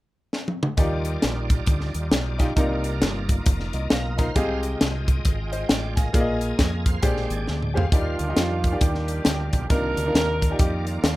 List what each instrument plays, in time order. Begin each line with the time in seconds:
0.33 snare
0.48 high tom
0.63 mid tom
0.77 fingered electric bass D#2, upright piano D#3 D#4 F4 G4 D5, tonewheel organ G3 D#4 F4 D5, kick, closed hi-hat
1.05 closed hi-hat
1.22 fingered electric bass A#1, snare, closed hi-hat
1.50 kick, closed hi-hat
1.66 fingered electric bass D2, kick, closed hi-hat
1.80 snare
1.94 fingered electric bass D#2, closed hi-hat
2.12 fingered electric bass B1, snare, closed hi-hat
2.39 upright piano D#4 F4 G4 D#5, kick, snare, closed hi-hat
2.56 fingered electric bass C2, upright piano C3 D#4 F4 A#4 D5, tonewheel organ A#3 D#4 F4 D5, kick, closed hi-hat
2.84 closed hi-hat
3.02 fingered electric bass G1, snare, closed hi-hat
3.29 kick, closed hi-hat
3.46 fingered electric bass F1, kick, closed hi-hat
3.60 snare
3.73 fingered electric bass C2, upright piano D#5, closed hi-hat
3.90 fingered electric bass B1, tonewheel organ A#4 D#5, upright piano F5, snare, closed hi-hat
4.17 upright piano D#4 F4 A#4 D#5 A#5, tonewheel organ C5 F5, kick, snare, closed hi-hat
4.35 fingered electric bass C2, upright piano C3 F4 G4 G#4 D#5, tonewheel organ G#3 F4 D#5 G5, kick, closed hi-hat
4.63 closed hi-hat
4.81 fingered electric bass C2, snare, closed hi-hat
5.08 kick, closed hi-hat
5.25 fingered electric bass G#1, kick, closed hi-hat
5.52 upright piano C5 D#5, closed hi-hat
5.69 fingered electric bass A1, tonewheel organ D5 G5, upright piano D#5 G5, snare, closed hi-hat
5.96 tonewheel organ A#4 D#5, upright piano F5 G#5, kick, snare, closed hi-hat
6.13 fingered electric bass A#1, upright piano A#2 F4 G#4 A#4 D5, tonewheel organ A#3 F4 G#4 D#5, kick, closed hi-hat
6.20 upright piano D#5
6.41 closed hi-hat
6.59 fingered electric bass F2, tonewheel organ D#5 G#5, kick, snare, closed hi-hat
6.86 tonewheel organ C5 F5, kick, closed hi-hat
7.02 fingered electric bass A#1, upright piano A#2 G4 G#4 C5 D5, tonewheel organ G#3 D4 B4 G5, kick, closed hi-hat
7.10 tonewheel organ C5
7.17 snare
7.30 fingered electric bass G#1, tonewheel organ D5 G#5, closed hi-hat
7.47 fingered electric bass D2, tonewheel organ D5 G5, snare
7.62 mid tom
7.74 upright piano G4 G#4 C5 F5, tonewheel organ C5 F5, floor tom
7.92 fingered electric bass D#2, upright piano D#3 D#4 F4 G4 D5, tonewheel organ D#3 G3 D4 F4, horn section A#3 D4 F4, kick, closed hi-hat
8.19 fingered electric bass D2, closed hi-hat
8.28 upright piano D#4 F4 G4 D#5
8.36 fingered electric bass F2, snare, closed hi-hat
8.64 kick, closed hi-hat
8.71 upright piano D#3 F4 G4 D5
8.81 fingered electric bass D#2, horn section A#3 D4 G4, kick, closed hi-hat
8.95 snare
9.08 closed hi-hat
9.25 fingered electric bass D2, snare, closed hi-hat
9.52 fingered electric bass B1, horn section G4, kick, closed hi-hat
9.69 fingered electric bass C2, upright piano C3 D4 D#4 F4 A#4, tonewheel organ D#3 A#3 F4 D5, horn section D4 D#4 A#4, kick, closed hi-hat
9.97 fingered electric bass D2, closed hi-hat
10.06 upright piano D4 D#4 F4 A#4
10.14 fingered electric bass D#2, snare, closed hi-hat
10.42 kick, closed hi-hat
10.50 upright piano D#4 F4 G4 D5
10.59 fingered electric bass F2, horn section A#3 D#4 G4, kick, closed hi-hat
10.87 horn section A#3 D4 F4, closed hi-hat
11.03 fingered electric bass D#2, snare, closed hi-hat